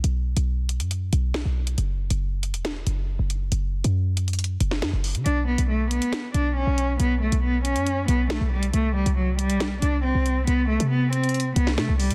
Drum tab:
HH |x-----x-----x-x-x---x---------x-|x-----x-----x-x-x---x-------x---|x-----x-----x-xxxx--x-------o-x-|x-----x-----x-x-x---x-------x---|
SD |------------------------o-------|----------------o---------------|----------------------o-o-------|----------------o---------------|

HH |x-----x-----x-x-x---x---------x-|x-----x-----x-x-x---x-------x---|x-----x-----x-xxxx--x-------o-x-|
SD |------------------------o-------|----------------o---------------|----------------------o-o-------|